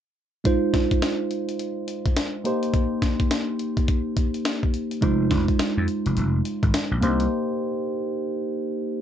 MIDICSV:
0, 0, Header, 1, 5, 480
1, 0, Start_track
1, 0, Key_signature, -4, "minor"
1, 0, Tempo, 571429
1, 381, Time_signature, 4, 2, 24, 8
1, 7573, End_track
2, 0, Start_track
2, 0, Title_t, "Tine electric piano"
2, 0, Program_c, 0, 4
2, 370, Note_on_c, 0, 56, 64
2, 377, Note_on_c, 0, 63, 62
2, 384, Note_on_c, 0, 65, 65
2, 391, Note_on_c, 0, 72, 78
2, 517, Control_c, 0, 64, 127
2, 2022, Note_off_c, 0, 56, 0
2, 2026, Note_off_c, 0, 63, 0
2, 2029, Note_off_c, 0, 65, 0
2, 2033, Note_off_c, 0, 72, 0
2, 2052, Note_on_c, 0, 58, 69
2, 2058, Note_on_c, 0, 63, 63
2, 2064, Note_on_c, 0, 67, 59
2, 2072, Control_c, 0, 64, 0
2, 2072, Note_on_c, 0, 72, 76
2, 2232, Control_c, 0, 64, 127
2, 3943, Note_off_c, 0, 58, 0
2, 3946, Note_off_c, 0, 63, 0
2, 3949, Note_off_c, 0, 67, 0
2, 3953, Note_off_c, 0, 72, 0
2, 4209, Note_on_c, 0, 56, 66
2, 4217, Note_on_c, 0, 63, 66
2, 4223, Note_on_c, 0, 65, 62
2, 4230, Note_on_c, 0, 72, 76
2, 4232, Control_c, 0, 64, 0
2, 4399, Control_c, 0, 64, 127
2, 5862, Note_off_c, 0, 56, 0
2, 5866, Note_off_c, 0, 63, 0
2, 5869, Note_off_c, 0, 65, 0
2, 5872, Note_off_c, 0, 72, 0
2, 5888, Note_on_c, 0, 58, 72
2, 5896, Note_on_c, 0, 62, 52
2, 5903, Note_on_c, 0, 67, 65
2, 5911, Note_on_c, 0, 72, 84
2, 5912, Control_c, 0, 64, 0
2, 5951, Note_on_c, 0, 63, 64
2, 5966, Note_off_c, 0, 62, 0
2, 6034, Control_c, 0, 64, 127
2, 7573, Note_off_c, 0, 58, 0
2, 7573, Note_off_c, 0, 63, 0
2, 7573, Note_off_c, 0, 67, 0
2, 7573, Note_off_c, 0, 72, 0
2, 7573, End_track
3, 0, Start_track
3, 0, Title_t, "Slap bass"
3, 0, Program_c, 1, 36
3, 4220, Note_on_c, 1, 29, 102
3, 4417, Note_off_c, 1, 29, 0
3, 4459, Note_on_c, 1, 29, 96
3, 4582, Note_off_c, 1, 29, 0
3, 4849, Note_on_c, 1, 41, 87
3, 4924, Note_off_c, 1, 41, 0
3, 5090, Note_on_c, 1, 29, 82
3, 5165, Note_off_c, 1, 29, 0
3, 5181, Note_on_c, 1, 29, 80
3, 5378, Note_off_c, 1, 29, 0
3, 5568, Note_on_c, 1, 32, 79
3, 5644, Note_off_c, 1, 32, 0
3, 5808, Note_on_c, 1, 34, 86
3, 5883, Note_off_c, 1, 34, 0
3, 5900, Note_on_c, 1, 36, 100
3, 6097, Note_off_c, 1, 36, 0
3, 7573, End_track
4, 0, Start_track
4, 0, Title_t, "Muted slap bass strokes"
4, 4700, Note_on_c, 9, 29, 45
4, 4784, Note_off_c, 9, 29, 0
4, 5659, Note_on_c, 9, 29, 44
4, 5743, Note_off_c, 9, 29, 0
4, 7573, End_track
5, 0, Start_track
5, 0, Title_t, "Drums"
5, 380, Note_on_c, 9, 36, 94
5, 380, Note_on_c, 9, 42, 72
5, 464, Note_off_c, 9, 36, 0
5, 464, Note_off_c, 9, 42, 0
5, 619, Note_on_c, 9, 36, 89
5, 620, Note_on_c, 9, 38, 68
5, 620, Note_on_c, 9, 42, 59
5, 703, Note_off_c, 9, 36, 0
5, 704, Note_off_c, 9, 38, 0
5, 704, Note_off_c, 9, 42, 0
5, 766, Note_on_c, 9, 36, 84
5, 766, Note_on_c, 9, 42, 41
5, 850, Note_off_c, 9, 36, 0
5, 850, Note_off_c, 9, 42, 0
5, 859, Note_on_c, 9, 38, 115
5, 862, Note_on_c, 9, 42, 64
5, 943, Note_off_c, 9, 38, 0
5, 946, Note_off_c, 9, 42, 0
5, 1098, Note_on_c, 9, 42, 55
5, 1182, Note_off_c, 9, 42, 0
5, 1249, Note_on_c, 9, 42, 55
5, 1333, Note_off_c, 9, 42, 0
5, 1339, Note_on_c, 9, 42, 73
5, 1423, Note_off_c, 9, 42, 0
5, 1578, Note_on_c, 9, 42, 77
5, 1662, Note_off_c, 9, 42, 0
5, 1727, Note_on_c, 9, 36, 95
5, 1728, Note_on_c, 9, 42, 52
5, 1811, Note_off_c, 9, 36, 0
5, 1812, Note_off_c, 9, 42, 0
5, 1818, Note_on_c, 9, 42, 70
5, 1819, Note_on_c, 9, 38, 107
5, 1902, Note_off_c, 9, 42, 0
5, 1903, Note_off_c, 9, 38, 0
5, 2060, Note_on_c, 9, 42, 72
5, 2144, Note_off_c, 9, 42, 0
5, 2207, Note_on_c, 9, 42, 53
5, 2291, Note_off_c, 9, 42, 0
5, 2298, Note_on_c, 9, 42, 66
5, 2299, Note_on_c, 9, 36, 95
5, 2382, Note_off_c, 9, 42, 0
5, 2383, Note_off_c, 9, 36, 0
5, 2538, Note_on_c, 9, 36, 78
5, 2538, Note_on_c, 9, 38, 63
5, 2538, Note_on_c, 9, 42, 60
5, 2622, Note_off_c, 9, 36, 0
5, 2622, Note_off_c, 9, 38, 0
5, 2622, Note_off_c, 9, 42, 0
5, 2686, Note_on_c, 9, 36, 81
5, 2686, Note_on_c, 9, 42, 44
5, 2770, Note_off_c, 9, 36, 0
5, 2770, Note_off_c, 9, 42, 0
5, 2780, Note_on_c, 9, 38, 113
5, 2782, Note_on_c, 9, 42, 65
5, 2864, Note_off_c, 9, 38, 0
5, 2866, Note_off_c, 9, 42, 0
5, 3019, Note_on_c, 9, 42, 58
5, 3103, Note_off_c, 9, 42, 0
5, 3167, Note_on_c, 9, 36, 91
5, 3167, Note_on_c, 9, 42, 51
5, 3251, Note_off_c, 9, 36, 0
5, 3251, Note_off_c, 9, 42, 0
5, 3260, Note_on_c, 9, 42, 69
5, 3261, Note_on_c, 9, 36, 82
5, 3344, Note_off_c, 9, 42, 0
5, 3345, Note_off_c, 9, 36, 0
5, 3500, Note_on_c, 9, 36, 88
5, 3500, Note_on_c, 9, 42, 83
5, 3584, Note_off_c, 9, 36, 0
5, 3584, Note_off_c, 9, 42, 0
5, 3648, Note_on_c, 9, 42, 51
5, 3732, Note_off_c, 9, 42, 0
5, 3739, Note_on_c, 9, 42, 69
5, 3740, Note_on_c, 9, 38, 106
5, 3823, Note_off_c, 9, 42, 0
5, 3824, Note_off_c, 9, 38, 0
5, 3890, Note_on_c, 9, 36, 88
5, 3974, Note_off_c, 9, 36, 0
5, 3980, Note_on_c, 9, 42, 72
5, 4064, Note_off_c, 9, 42, 0
5, 4127, Note_on_c, 9, 42, 57
5, 4211, Note_off_c, 9, 42, 0
5, 4219, Note_on_c, 9, 36, 97
5, 4219, Note_on_c, 9, 42, 71
5, 4303, Note_off_c, 9, 36, 0
5, 4303, Note_off_c, 9, 42, 0
5, 4458, Note_on_c, 9, 36, 84
5, 4459, Note_on_c, 9, 38, 70
5, 4459, Note_on_c, 9, 42, 57
5, 4542, Note_off_c, 9, 36, 0
5, 4543, Note_off_c, 9, 38, 0
5, 4543, Note_off_c, 9, 42, 0
5, 4607, Note_on_c, 9, 36, 86
5, 4607, Note_on_c, 9, 42, 43
5, 4691, Note_off_c, 9, 36, 0
5, 4691, Note_off_c, 9, 42, 0
5, 4699, Note_on_c, 9, 38, 123
5, 4701, Note_on_c, 9, 42, 67
5, 4783, Note_off_c, 9, 38, 0
5, 4785, Note_off_c, 9, 42, 0
5, 4938, Note_on_c, 9, 42, 55
5, 5022, Note_off_c, 9, 42, 0
5, 5089, Note_on_c, 9, 42, 58
5, 5173, Note_off_c, 9, 42, 0
5, 5180, Note_on_c, 9, 42, 73
5, 5264, Note_off_c, 9, 42, 0
5, 5421, Note_on_c, 9, 42, 78
5, 5505, Note_off_c, 9, 42, 0
5, 5568, Note_on_c, 9, 36, 89
5, 5569, Note_on_c, 9, 42, 48
5, 5652, Note_off_c, 9, 36, 0
5, 5653, Note_off_c, 9, 42, 0
5, 5661, Note_on_c, 9, 42, 81
5, 5662, Note_on_c, 9, 38, 114
5, 5745, Note_off_c, 9, 42, 0
5, 5746, Note_off_c, 9, 38, 0
5, 5901, Note_on_c, 9, 42, 75
5, 5985, Note_off_c, 9, 42, 0
5, 6048, Note_on_c, 9, 42, 56
5, 6132, Note_off_c, 9, 42, 0
5, 7573, End_track
0, 0, End_of_file